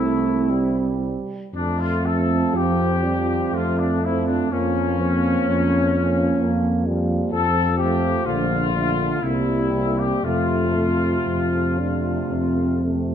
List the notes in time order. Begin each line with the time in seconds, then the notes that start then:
Already playing: C2 C4 E4
0.00 A3
0.50 G3
1.54 F2 A3 D4
1.80 F4
2.05 F3 C4 A4
2.54 F2 F3 G4
3.04 F3 G3 C4
3.53 F2 A3 F4
3.78 D4
4.03 F3 C4 E4
4.27 D4
4.51 F2 F3 A#3 C#4
5.00 F3 A#3 C4
5.48 F2 C#4
5.94 F3 A#3
6.41 F2 A#3
6.87 F3 G3 A#3
7.32 F2 F3 A4
7.78 F3 A3 G4
8.25 A#1 D3 A3 F4
8.73 D3 A3
9.22 C2 C3 G3 A#3 E4
9.72 C3 A#3
9.99 G4
10.24 F2 C3 A3 F4
10.77 C3 A3
11.27 F2 F3
11.79 C3 A3 D4
12.30 F2 C4
12.83 C3 A3